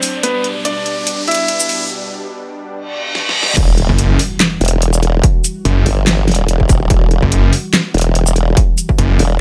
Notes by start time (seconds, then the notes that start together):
Already playing: A2 F#3 C4 D4 C5, riser
0.03 open hi-hat, shaker
0.23 B2 G3 B3 B4, closed hi-hat
0.44 closed hi-hat
0.65 D4 D5, closed hi-hat
0.86 closed hi-hat
1.07 closed hi-hat
1.28 E4 E5, closed hi-hat
1.31 closed hi-hat
1.34 closed hi-hat
1.48 closed hi-hat
1.60 shaker
1.69 open hi-hat
2.73 reverse cymbal
3.15 snare
3.29 snare
3.43 snare
3.57 E1 E3 G3 F#4, kick, closed hi-hat, crash, impact
3.78 closed hi-hat
3.89 F#1, kick
3.98 closed hi-hat
4.19 open hi-hat
4.40 snare, clap, closed hi-hat
4.61 E1, closed hi-hat
4.65 closed hi-hat
4.68 closed hi-hat
4.82 closed hi-hat
4.93 shaker
5.03 closed hi-hat
5.24 kick, closed hi-hat
5.44 closed hi-hat, shaker
5.65 F#1, closed hi-hat
5.86 G1, open hi-hat
6.07 snare, clap, closed hi-hat
6.28 snare, closed hi-hat
6.31 closed hi-hat
6.35 closed hi-hat
6.48 E1, closed hi-hat
6.60 kick
6.69 kick, closed hi-hat, shaker
6.90 E1, kick, closed hi-hat
7.11 closed hi-hat
7.22 F#1, kick
7.32 closed hi-hat
7.53 open hi-hat
7.73 snare, clap, closed hi-hat
7.94 E1, closed hi-hat
7.98 closed hi-hat
8.01 closed hi-hat
8.15 closed hi-hat
8.27 shaker
8.36 closed hi-hat
8.57 kick, closed hi-hat
8.78 closed hi-hat, shaker
8.89 kick
8.98 F#1, closed hi-hat
9.19 E1, open hi-hat